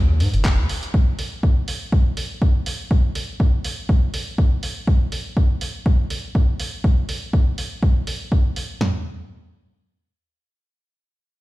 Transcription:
Already playing: analog synth bass D#2
0.20 analog synth bass G#2, open hi-hat
0.34 analog synth bass F#1, closed hi-hat
0.45 kick, clap, closed hi-hat
0.58 analog synth bass D#2
0.69 open hi-hat
0.83 closed hi-hat
0.94 kick
1.19 open hi-hat
1.43 kick
1.68 open hi-hat
1.92 kick
2.17 open hi-hat
2.42 kick
2.66 open hi-hat
2.91 kick
3.15 open hi-hat
3.40 kick
3.65 open hi-hat
3.89 kick
4.14 open hi-hat
4.38 kick
4.63 open hi-hat
4.87 kick
5.12 open hi-hat
5.37 kick
5.61 open hi-hat
5.86 kick
6.10 open hi-hat
6.35 kick
6.60 open hi-hat
6.84 kick
7.09 open hi-hat
7.33 kick
7.58 open hi-hat
7.83 kick
8.07 open hi-hat
8.32 kick
8.56 open hi-hat
8.81 snare, floor tom

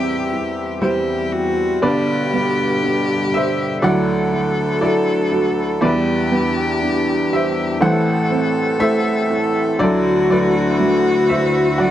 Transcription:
Already playing: upright piano E2 E3 C5 E5, harmonium E2 E3 G3 C4, felt piano E3 C4 E4 G4, cello G4
0.32 felt piano E4
0.81 upright piano G3 E4 C5, cello G4
1.32 cello F#4
1.82 upright piano G1 G2 G3 D4 B4 D5, harmonium G2 B2 D3, felt piano B3, cello G4
2.33 felt piano B3
2.82 felt piano D4
3.32 felt piano G4, upright piano E5
3.37 upright piano C5
3.81 harmonium D2 E4 F#4, upright piano D2 D3 F#3 E4 D5 F#5, felt piano F#3, cello A4
3.86 upright piano D5
4.33 felt piano E4
4.81 upright piano F#3 E4 A4 D5
5.32 felt piano F#4
5.81 upright piano E2 E3 G3 E4 B4 D5, harmonium E2 E3 D4 G4, felt piano B3, cello G4
6.31 felt piano B3
6.82 felt piano D4
7.31 felt piano G4, upright piano C5 E5
7.80 upright piano A1 A2 A3 E4 C5 F#5, harmonium A2 C4 A4, felt piano E3, cello A4
8.30 felt piano C4
8.80 upright piano A3 E4 C5 E5
9.30 felt piano E4
9.79 upright piano D2 D3 F#3 E4 D5, harmonium D2 D3 E4 F#4, felt piano F#3, cello F#4
9.83 upright piano A4
10.30 felt piano F#3, upright piano B4 D5
10.79 felt piano A3
11.29 felt piano E4, upright piano C5 E5
11.78 felt piano F#3, upright piano D5 F#5

